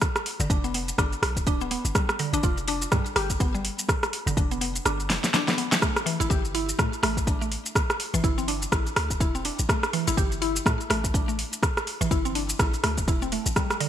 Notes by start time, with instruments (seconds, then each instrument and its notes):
0.01 kick, cross-stick, closed hi-hat, shaker
0.16 cross-stick, closed hi-hat, shaker
0.26 open hi-hat
0.40 808-style bass G1, synth arpeggio sound D3, closed hi-hat, shaker
0.50 808-style bass F1, synth arpeggio sound D4, kick, closed hi-hat, shaker
0.64 synth arpeggio sound B3, closed hi-hat, shaker
0.74 synth arpeggio sound B3, open hi-hat
0.88 closed hi-hat, shaker
0.98 808-style bass G1, synth arpeggio sound D4, kick, cross-stick, closed hi-hat, shaker
1.13 closed hi-hat, shaker
1.22 808-style bass B1, cross-stick, open hi-hat
1.36 808-style bass D1, kick, closed hi-hat, shaker
1.47 synth arpeggio sound D4, kick, closed hi-hat, shaker
1.61 synth arpeggio sound B3, shaker
1.71 synth arpeggio sound B3, open hi-hat
1.85 808-style bass G1, closed hi-hat, shaker
1.95 synth arpeggio sound G3, kick, cross-stick, closed hi-hat, shaker
2.09 cross-stick, closed hi-hat, shaker
2.19 synth arpeggio sound D3, open hi-hat
2.33 808-style bass G1, synth arpeggio sound D4, closed hi-hat, shaker
2.43 808-style bass F1, synth arpeggio sound F4, kick, closed hi-hat, shaker
2.57 closed hi-hat, shaker
2.68 synth arpeggio sound D4, open hi-hat
2.82 closed hi-hat, shaker
2.92 808-style bass G2, synth arpeggio sound G3, kick, cross-stick, closed hi-hat, shaker
3.06 closed hi-hat, shaker
3.16 808-style bass G1, synth arpeggio sound G4, cross-stick, open hi-hat
3.30 kick, closed hi-hat, shaker
3.40 synth arpeggio sound B3, kick, closed hi-hat, shaker
3.54 synth arpeggio sound G3, shaker
3.65 open hi-hat
3.79 closed hi-hat, shaker
3.89 kick, cross-stick, closed hi-hat, shaker
4.03 cross-stick, closed hi-hat, shaker
4.13 open hi-hat
4.26 808-style bass G1, synth arpeggio sound D3, closed hi-hat, shaker
4.37 808-style bass F1, synth arpeggio sound D4, kick, closed hi-hat, shaker
4.51 synth arpeggio sound B3, closed hi-hat, shaker
4.61 synth arpeggio sound B3, open hi-hat
4.75 closed hi-hat, shaker
4.85 808-style bass G1, synth arpeggio sound D4, cross-stick, closed hi-hat, shaker
5.00 closed hi-hat, shaker
5.10 808-style bass F1, snare, open hi-hat
5.24 snare, closed hi-hat, shaker
5.34 synth arpeggio sound D4, snare, closed hi-hat, shaker
5.48 synth arpeggio sound B3, snare, closed hi-hat, shaker
5.58 synth arpeggio sound B3, open hi-hat
5.72 snare, closed hi-hat, shaker
5.82 synth arpeggio sound A3, kick, cross-stick, closed hi-hat, shaker
5.96 cross-stick, closed hi-hat, shaker
6.06 synth arpeggio sound E3, open hi-hat
6.20 808-style bass A1, synth arpeggio sound E4, closed hi-hat, shaker
6.30 808-style bass G1, synth arpeggio sound G4, kick, closed hi-hat, shaker
6.45 closed hi-hat, shaker
6.55 synth arpeggio sound E4, open hi-hat
6.69 closed hi-hat, shaker
6.79 808-style bass A2, synth arpeggio sound A3, kick, cross-stick, closed hi-hat, shaker
6.93 closed hi-hat, shaker
7.03 808-style bass A1, synth arpeggio sound A3, cross-stick, open hi-hat
7.17 kick, closed hi-hat, shaker
7.27 synth arpeggio sound D4, kick, closed hi-hat, shaker
7.41 synth arpeggio sound A3, shaker
7.52 open hi-hat
7.66 closed hi-hat, shaker
7.75 kick, cross-stick, closed hi-hat, shaker
7.90 cross-stick, closed hi-hat, shaker
8.00 open hi-hat
8.14 808-style bass A1, synth arpeggio sound E3, closed hi-hat, shaker
8.24 808-style bass G1, synth arpeggio sound E4, kick, closed hi-hat, shaker
8.38 synth arpeggio sound C4, closed hi-hat, shaker
8.48 synth arpeggio sound D4, open hi-hat
8.62 closed hi-hat, shaker
8.72 808-style bass A1, synth arpeggio sound E4, kick, cross-stick, closed hi-hat, shaker
8.87 closed hi-hat, shaker
8.96 808-style bass D2, cross-stick, open hi-hat
9.10 808-style bass E1, kick, closed hi-hat, shaker
9.20 synth arpeggio sound E4, kick, closed hi-hat, shaker
9.35 synth arpeggio sound C4, shaker
9.45 synth arpeggio sound D4, open hi-hat
9.59 808-style bass A1, closed hi-hat, shaker
9.69 synth arpeggio sound A3, kick, cross-stick, closed hi-hat, shaker
9.83 cross-stick, closed hi-hat, shaker
9.93 synth arpeggio sound E3, open hi-hat
10.08 808-style bass A1, synth arpeggio sound E4, closed hi-hat, shaker
10.17 808-style bass G1, synth arpeggio sound G4, kick, closed hi-hat, shaker
10.32 closed hi-hat, shaker
10.42 synth arpeggio sound E4, open hi-hat
10.56 closed hi-hat, shaker
10.66 808-style bass A2, synth arpeggio sound A3, kick, cross-stick, closed hi-hat, shaker
10.81 closed hi-hat, shaker
10.90 808-style bass A1, synth arpeggio sound A3, cross-stick, open hi-hat
11.04 kick, closed hi-hat, shaker
11.14 synth arpeggio sound D4, kick, closed hi-hat, shaker
11.28 synth arpeggio sound A3, shaker
11.39 open hi-hat
11.53 closed hi-hat, shaker
11.63 kick, cross-stick, closed hi-hat, shaker
11.77 cross-stick, closed hi-hat, shaker
11.87 open hi-hat
12.01 808-style bass A1, synth arpeggio sound E3, closed hi-hat, shaker
12.11 808-style bass G1, synth arpeggio sound E4, kick, closed hi-hat, shaker
12.25 synth arpeggio sound C4, closed hi-hat, shaker
12.35 synth arpeggio sound D4, open hi-hat
12.49 closed hi-hat, shaker
12.59 808-style bass A1, synth arpeggio sound E4, kick, cross-stick, closed hi-hat, shaker
12.74 closed hi-hat, shaker
12.84 808-style bass D2, synth arpeggio sound A3, cross-stick, open hi-hat
12.98 808-style bass E1, kick, closed hi-hat, shaker
13.08 synth arpeggio sound E4, kick, closed hi-hat, shaker
13.22 synth arpeggio sound C4, shaker
13.32 synth arpeggio sound A3, open hi-hat
13.46 808-style bass A1, closed hi-hat, shaker
13.56 synth arpeggio sound G3, kick, cross-stick, closed hi-hat, shaker
13.70 cross-stick, closed hi-hat, shaker
13.80 synth arpeggio sound D3, open hi-hat